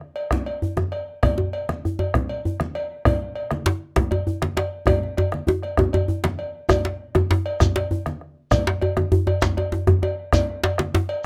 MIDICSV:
0, 0, Header, 1, 5, 480
1, 0, Start_track
1, 0, Tempo, 303644
1, 1941, Time_signature, 12, 3, 24, 8
1, 17792, End_track
2, 0, Start_track
2, 0, Title_t, "Bombo"
2, 18, Note_on_c, 9, 37, 26
2, 176, Note_off_c, 9, 37, 0
2, 485, Note_on_c, 9, 37, 79
2, 485, Note_on_c, 9, 43, 82
2, 643, Note_off_c, 9, 37, 0
2, 643, Note_off_c, 9, 43, 0
2, 1222, Note_on_c, 9, 37, 69
2, 1381, Note_off_c, 9, 37, 0
2, 1462, Note_on_c, 9, 37, 29
2, 1620, Note_off_c, 9, 37, 0
2, 1946, Note_on_c, 9, 37, 88
2, 1946, Note_on_c, 9, 43, 93
2, 2104, Note_off_c, 9, 37, 0
2, 2104, Note_off_c, 9, 43, 0
2, 2673, Note_on_c, 9, 37, 72
2, 2831, Note_off_c, 9, 37, 0
2, 2924, Note_on_c, 9, 37, 27
2, 3082, Note_off_c, 9, 37, 0
2, 3384, Note_on_c, 9, 37, 90
2, 3384, Note_on_c, 9, 43, 79
2, 3542, Note_off_c, 9, 37, 0
2, 3542, Note_off_c, 9, 43, 0
2, 4106, Note_on_c, 9, 37, 72
2, 4264, Note_off_c, 9, 37, 0
2, 4351, Note_on_c, 9, 37, 32
2, 4510, Note_off_c, 9, 37, 0
2, 4826, Note_on_c, 9, 37, 105
2, 4826, Note_on_c, 9, 43, 104
2, 4985, Note_off_c, 9, 37, 0
2, 4985, Note_off_c, 9, 43, 0
2, 5542, Note_on_c, 9, 37, 86
2, 5700, Note_off_c, 9, 37, 0
2, 5785, Note_on_c, 9, 37, 35
2, 5943, Note_off_c, 9, 37, 0
2, 6265, Note_on_c, 9, 37, 81
2, 6265, Note_on_c, 9, 43, 87
2, 6423, Note_off_c, 9, 37, 0
2, 6423, Note_off_c, 9, 43, 0
2, 6985, Note_on_c, 9, 37, 68
2, 7143, Note_off_c, 9, 37, 0
2, 7229, Note_on_c, 9, 37, 33
2, 7387, Note_off_c, 9, 37, 0
2, 7695, Note_on_c, 9, 37, 92
2, 7695, Note_on_c, 9, 43, 93
2, 7853, Note_off_c, 9, 37, 0
2, 7853, Note_off_c, 9, 43, 0
2, 8177, Note_on_c, 9, 37, 31
2, 8335, Note_off_c, 9, 37, 0
2, 8413, Note_on_c, 9, 37, 70
2, 8571, Note_off_c, 9, 37, 0
2, 8657, Note_on_c, 9, 37, 27
2, 8815, Note_off_c, 9, 37, 0
2, 8892, Note_on_c, 9, 37, 30
2, 9050, Note_off_c, 9, 37, 0
2, 9128, Note_on_c, 9, 37, 81
2, 9128, Note_on_c, 9, 43, 74
2, 9286, Note_off_c, 9, 37, 0
2, 9286, Note_off_c, 9, 43, 0
2, 9861, Note_on_c, 9, 37, 68
2, 10020, Note_off_c, 9, 37, 0
2, 10584, Note_on_c, 9, 37, 109
2, 10584, Note_on_c, 9, 43, 92
2, 10742, Note_off_c, 9, 37, 0
2, 10742, Note_off_c, 9, 43, 0
2, 11300, Note_on_c, 9, 37, 73
2, 11458, Note_off_c, 9, 37, 0
2, 11547, Note_on_c, 9, 37, 30
2, 11705, Note_off_c, 9, 37, 0
2, 12017, Note_on_c, 9, 37, 82
2, 12017, Note_on_c, 9, 43, 86
2, 12175, Note_off_c, 9, 37, 0
2, 12175, Note_off_c, 9, 43, 0
2, 12740, Note_on_c, 9, 37, 71
2, 12898, Note_off_c, 9, 37, 0
2, 12983, Note_on_c, 9, 37, 31
2, 13141, Note_off_c, 9, 37, 0
2, 13461, Note_on_c, 9, 37, 94
2, 13461, Note_on_c, 9, 43, 86
2, 13619, Note_off_c, 9, 37, 0
2, 13619, Note_off_c, 9, 43, 0
2, 14175, Note_on_c, 9, 37, 70
2, 14333, Note_off_c, 9, 37, 0
2, 14412, Note_on_c, 9, 37, 29
2, 14570, Note_off_c, 9, 37, 0
2, 14892, Note_on_c, 9, 37, 75
2, 14892, Note_on_c, 9, 43, 84
2, 15050, Note_off_c, 9, 37, 0
2, 15050, Note_off_c, 9, 43, 0
2, 15608, Note_on_c, 9, 37, 71
2, 15767, Note_off_c, 9, 37, 0
2, 15846, Note_on_c, 9, 37, 29
2, 16004, Note_off_c, 9, 37, 0
2, 16322, Note_on_c, 9, 37, 92
2, 16322, Note_on_c, 9, 43, 95
2, 16480, Note_off_c, 9, 37, 0
2, 16480, Note_off_c, 9, 43, 0
2, 17044, Note_on_c, 9, 37, 81
2, 17202, Note_off_c, 9, 37, 0
2, 17296, Note_on_c, 9, 37, 30
2, 17454, Note_off_c, 9, 37, 0
2, 17792, End_track
3, 0, Start_track
3, 0, Title_t, "Djembe"
3, 500, Note_on_c, 9, 63, 67
3, 659, Note_off_c, 9, 63, 0
3, 984, Note_on_c, 9, 64, 67
3, 1142, Note_off_c, 9, 64, 0
3, 1215, Note_on_c, 9, 63, 67
3, 1221, Note_on_c, 9, 62, 47
3, 1373, Note_off_c, 9, 63, 0
3, 1379, Note_off_c, 9, 62, 0
3, 1944, Note_on_c, 9, 63, 63
3, 1944, Note_on_c, 9, 64, 66
3, 2102, Note_off_c, 9, 63, 0
3, 2102, Note_off_c, 9, 64, 0
3, 2178, Note_on_c, 9, 63, 66
3, 2336, Note_off_c, 9, 63, 0
3, 2676, Note_on_c, 9, 62, 48
3, 2834, Note_off_c, 9, 62, 0
3, 2927, Note_on_c, 9, 64, 70
3, 3085, Note_off_c, 9, 64, 0
3, 3147, Note_on_c, 9, 63, 67
3, 3305, Note_off_c, 9, 63, 0
3, 3395, Note_on_c, 9, 63, 65
3, 3553, Note_off_c, 9, 63, 0
3, 3878, Note_on_c, 9, 64, 66
3, 4037, Note_off_c, 9, 64, 0
3, 4121, Note_on_c, 9, 62, 49
3, 4279, Note_off_c, 9, 62, 0
3, 4838, Note_on_c, 9, 63, 71
3, 4838, Note_on_c, 9, 64, 73
3, 4996, Note_off_c, 9, 63, 0
3, 4996, Note_off_c, 9, 64, 0
3, 5552, Note_on_c, 9, 62, 56
3, 5710, Note_off_c, 9, 62, 0
3, 5782, Note_on_c, 9, 64, 74
3, 5784, Note_on_c, 9, 62, 95
3, 5940, Note_off_c, 9, 64, 0
3, 5943, Note_off_c, 9, 62, 0
3, 6262, Note_on_c, 9, 62, 70
3, 6271, Note_on_c, 9, 63, 72
3, 6420, Note_off_c, 9, 62, 0
3, 6429, Note_off_c, 9, 63, 0
3, 6507, Note_on_c, 9, 63, 76
3, 6665, Note_off_c, 9, 63, 0
3, 6747, Note_on_c, 9, 64, 68
3, 6905, Note_off_c, 9, 64, 0
3, 6993, Note_on_c, 9, 62, 72
3, 6994, Note_off_c, 9, 62, 0
3, 6994, Note_on_c, 9, 62, 51
3, 7152, Note_off_c, 9, 62, 0
3, 7226, Note_on_c, 9, 62, 87
3, 7384, Note_off_c, 9, 62, 0
3, 7697, Note_on_c, 9, 63, 67
3, 7697, Note_on_c, 9, 64, 71
3, 7707, Note_off_c, 9, 63, 0
3, 7707, Note_on_c, 9, 63, 91
3, 7855, Note_off_c, 9, 64, 0
3, 7865, Note_off_c, 9, 63, 0
3, 8191, Note_on_c, 9, 63, 88
3, 8349, Note_off_c, 9, 63, 0
3, 8409, Note_on_c, 9, 62, 53
3, 8567, Note_off_c, 9, 62, 0
3, 8647, Note_on_c, 9, 64, 75
3, 8671, Note_on_c, 9, 63, 95
3, 8805, Note_off_c, 9, 64, 0
3, 8829, Note_off_c, 9, 63, 0
3, 9129, Note_on_c, 9, 63, 73
3, 9151, Note_off_c, 9, 63, 0
3, 9151, Note_on_c, 9, 63, 85
3, 9309, Note_off_c, 9, 63, 0
3, 9392, Note_on_c, 9, 63, 93
3, 9550, Note_off_c, 9, 63, 0
3, 9615, Note_on_c, 9, 64, 67
3, 9773, Note_off_c, 9, 64, 0
3, 9860, Note_on_c, 9, 62, 84
3, 9862, Note_off_c, 9, 62, 0
3, 9862, Note_on_c, 9, 62, 52
3, 10020, Note_off_c, 9, 62, 0
3, 10104, Note_on_c, 9, 62, 21
3, 10262, Note_off_c, 9, 62, 0
3, 10570, Note_on_c, 9, 63, 85
3, 10570, Note_on_c, 9, 64, 86
3, 10581, Note_off_c, 9, 63, 0
3, 10581, Note_on_c, 9, 63, 103
3, 10729, Note_off_c, 9, 64, 0
3, 10739, Note_off_c, 9, 63, 0
3, 10827, Note_on_c, 9, 62, 76
3, 10985, Note_off_c, 9, 62, 0
3, 11300, Note_on_c, 9, 62, 65
3, 11307, Note_on_c, 9, 63, 100
3, 11458, Note_off_c, 9, 62, 0
3, 11465, Note_off_c, 9, 63, 0
3, 11550, Note_on_c, 9, 62, 85
3, 11550, Note_on_c, 9, 64, 82
3, 11708, Note_off_c, 9, 62, 0
3, 11708, Note_off_c, 9, 64, 0
3, 12027, Note_on_c, 9, 63, 94
3, 12032, Note_off_c, 9, 63, 0
3, 12032, Note_on_c, 9, 63, 70
3, 12190, Note_off_c, 9, 63, 0
3, 12264, Note_on_c, 9, 62, 77
3, 12422, Note_off_c, 9, 62, 0
3, 12503, Note_on_c, 9, 64, 75
3, 12661, Note_off_c, 9, 64, 0
3, 12750, Note_on_c, 9, 62, 59
3, 12908, Note_off_c, 9, 62, 0
3, 13455, Note_on_c, 9, 63, 70
3, 13455, Note_on_c, 9, 64, 81
3, 13613, Note_off_c, 9, 63, 0
3, 13613, Note_off_c, 9, 64, 0
3, 13708, Note_on_c, 9, 62, 99
3, 13866, Note_off_c, 9, 62, 0
3, 13947, Note_on_c, 9, 63, 72
3, 14105, Note_off_c, 9, 63, 0
3, 14177, Note_on_c, 9, 62, 60
3, 14183, Note_on_c, 9, 63, 83
3, 14335, Note_off_c, 9, 62, 0
3, 14341, Note_off_c, 9, 63, 0
3, 14414, Note_on_c, 9, 64, 84
3, 14424, Note_off_c, 9, 64, 0
3, 14424, Note_on_c, 9, 64, 82
3, 14582, Note_off_c, 9, 64, 0
3, 14653, Note_on_c, 9, 63, 84
3, 14811, Note_off_c, 9, 63, 0
3, 14894, Note_on_c, 9, 62, 105
3, 14898, Note_on_c, 9, 63, 71
3, 15052, Note_off_c, 9, 62, 0
3, 15056, Note_off_c, 9, 63, 0
3, 15139, Note_on_c, 9, 63, 80
3, 15297, Note_off_c, 9, 63, 0
3, 15367, Note_on_c, 9, 63, 81
3, 15375, Note_on_c, 9, 64, 66
3, 15525, Note_off_c, 9, 63, 0
3, 15533, Note_off_c, 9, 64, 0
3, 15606, Note_on_c, 9, 64, 83
3, 15618, Note_on_c, 9, 62, 59
3, 15764, Note_off_c, 9, 64, 0
3, 15776, Note_off_c, 9, 62, 0
3, 15853, Note_on_c, 9, 63, 74
3, 16011, Note_off_c, 9, 63, 0
3, 16326, Note_on_c, 9, 63, 72
3, 16326, Note_on_c, 9, 64, 79
3, 16484, Note_off_c, 9, 63, 0
3, 16484, Note_off_c, 9, 64, 0
3, 16812, Note_on_c, 9, 62, 101
3, 16970, Note_off_c, 9, 62, 0
3, 17058, Note_on_c, 9, 62, 75
3, 17065, Note_off_c, 9, 62, 0
3, 17065, Note_on_c, 9, 62, 53
3, 17223, Note_off_c, 9, 62, 0
3, 17301, Note_on_c, 9, 64, 80
3, 17302, Note_on_c, 9, 62, 85
3, 17459, Note_off_c, 9, 64, 0
3, 17460, Note_off_c, 9, 62, 0
3, 17792, End_track
4, 0, Start_track
4, 0, Title_t, "Shekere"
4, 10589, Note_on_c, 9, 82, 59
4, 10747, Note_off_c, 9, 82, 0
4, 12027, Note_on_c, 9, 82, 69
4, 12185, Note_off_c, 9, 82, 0
4, 13461, Note_on_c, 9, 82, 65
4, 13619, Note_off_c, 9, 82, 0
4, 14890, Note_on_c, 9, 82, 74
4, 15048, Note_off_c, 9, 82, 0
4, 16343, Note_on_c, 9, 82, 63
4, 16501, Note_off_c, 9, 82, 0
4, 17792, End_track
5, 0, Start_track
5, 0, Title_t, "Drums"
5, 247, Note_on_c, 9, 56, 44
5, 405, Note_off_c, 9, 56, 0
5, 512, Note_on_c, 9, 64, 64
5, 670, Note_off_c, 9, 64, 0
5, 733, Note_on_c, 9, 56, 41
5, 891, Note_off_c, 9, 56, 0
5, 1224, Note_on_c, 9, 63, 51
5, 1382, Note_off_c, 9, 63, 0
5, 1453, Note_on_c, 9, 56, 44
5, 1611, Note_off_c, 9, 56, 0
5, 1939, Note_on_c, 9, 56, 49
5, 1947, Note_on_c, 9, 64, 75
5, 2098, Note_off_c, 9, 56, 0
5, 2105, Note_off_c, 9, 64, 0
5, 2423, Note_on_c, 9, 56, 43
5, 2581, Note_off_c, 9, 56, 0
5, 2671, Note_on_c, 9, 63, 55
5, 2829, Note_off_c, 9, 63, 0
5, 3149, Note_on_c, 9, 56, 40
5, 3307, Note_off_c, 9, 56, 0
5, 3400, Note_on_c, 9, 64, 68
5, 3558, Note_off_c, 9, 64, 0
5, 3626, Note_on_c, 9, 56, 41
5, 3784, Note_off_c, 9, 56, 0
5, 4119, Note_on_c, 9, 63, 57
5, 4277, Note_off_c, 9, 63, 0
5, 4349, Note_on_c, 9, 56, 48
5, 4507, Note_off_c, 9, 56, 0
5, 4832, Note_on_c, 9, 56, 57
5, 4843, Note_on_c, 9, 64, 77
5, 4990, Note_off_c, 9, 56, 0
5, 5001, Note_off_c, 9, 64, 0
5, 5303, Note_on_c, 9, 56, 41
5, 5461, Note_off_c, 9, 56, 0
5, 5557, Note_on_c, 9, 63, 61
5, 5715, Note_off_c, 9, 63, 0
5, 6276, Note_on_c, 9, 64, 76
5, 6434, Note_off_c, 9, 64, 0
5, 6496, Note_on_c, 9, 56, 41
5, 6654, Note_off_c, 9, 56, 0
5, 6988, Note_on_c, 9, 63, 56
5, 7146, Note_off_c, 9, 63, 0
5, 7220, Note_on_c, 9, 56, 46
5, 7378, Note_off_c, 9, 56, 0
5, 7698, Note_on_c, 9, 56, 61
5, 7709, Note_on_c, 9, 64, 70
5, 7856, Note_off_c, 9, 56, 0
5, 7867, Note_off_c, 9, 64, 0
5, 7957, Note_on_c, 9, 63, 23
5, 8115, Note_off_c, 9, 63, 0
5, 8180, Note_on_c, 9, 56, 49
5, 8200, Note_on_c, 9, 63, 19
5, 8338, Note_off_c, 9, 56, 0
5, 8358, Note_off_c, 9, 63, 0
5, 8438, Note_on_c, 9, 63, 47
5, 8596, Note_off_c, 9, 63, 0
5, 8903, Note_on_c, 9, 56, 39
5, 8918, Note_on_c, 9, 63, 21
5, 9061, Note_off_c, 9, 56, 0
5, 9076, Note_off_c, 9, 63, 0
5, 9150, Note_on_c, 9, 64, 75
5, 9308, Note_off_c, 9, 64, 0
5, 9376, Note_on_c, 9, 56, 44
5, 9396, Note_on_c, 9, 63, 23
5, 9534, Note_off_c, 9, 56, 0
5, 9554, Note_off_c, 9, 63, 0
5, 9877, Note_on_c, 9, 63, 59
5, 10035, Note_off_c, 9, 63, 0
5, 10097, Note_on_c, 9, 56, 38
5, 10255, Note_off_c, 9, 56, 0
5, 10576, Note_on_c, 9, 56, 65
5, 10595, Note_on_c, 9, 64, 67
5, 10734, Note_off_c, 9, 56, 0
5, 10753, Note_off_c, 9, 64, 0
5, 11314, Note_on_c, 9, 63, 52
5, 11472, Note_off_c, 9, 63, 0
5, 11787, Note_on_c, 9, 56, 52
5, 11945, Note_off_c, 9, 56, 0
5, 12034, Note_on_c, 9, 64, 70
5, 12192, Note_off_c, 9, 64, 0
5, 12264, Note_on_c, 9, 56, 45
5, 12422, Note_off_c, 9, 56, 0
5, 12747, Note_on_c, 9, 63, 57
5, 12905, Note_off_c, 9, 63, 0
5, 13454, Note_on_c, 9, 56, 64
5, 13466, Note_on_c, 9, 64, 84
5, 13613, Note_off_c, 9, 56, 0
5, 13624, Note_off_c, 9, 64, 0
5, 13934, Note_on_c, 9, 56, 49
5, 14092, Note_off_c, 9, 56, 0
5, 14175, Note_on_c, 9, 63, 55
5, 14333, Note_off_c, 9, 63, 0
5, 14657, Note_on_c, 9, 56, 46
5, 14815, Note_off_c, 9, 56, 0
5, 14893, Note_on_c, 9, 64, 73
5, 15051, Note_off_c, 9, 64, 0
5, 15132, Note_on_c, 9, 56, 50
5, 15290, Note_off_c, 9, 56, 0
5, 15617, Note_on_c, 9, 63, 56
5, 15775, Note_off_c, 9, 63, 0
5, 15854, Note_on_c, 9, 56, 48
5, 16013, Note_off_c, 9, 56, 0
5, 16335, Note_on_c, 9, 64, 71
5, 16337, Note_on_c, 9, 56, 60
5, 16493, Note_off_c, 9, 64, 0
5, 16495, Note_off_c, 9, 56, 0
5, 16819, Note_on_c, 9, 56, 51
5, 16977, Note_off_c, 9, 56, 0
5, 17059, Note_on_c, 9, 63, 53
5, 17217, Note_off_c, 9, 63, 0
5, 17532, Note_on_c, 9, 56, 53
5, 17690, Note_off_c, 9, 56, 0
5, 17792, End_track
0, 0, End_of_file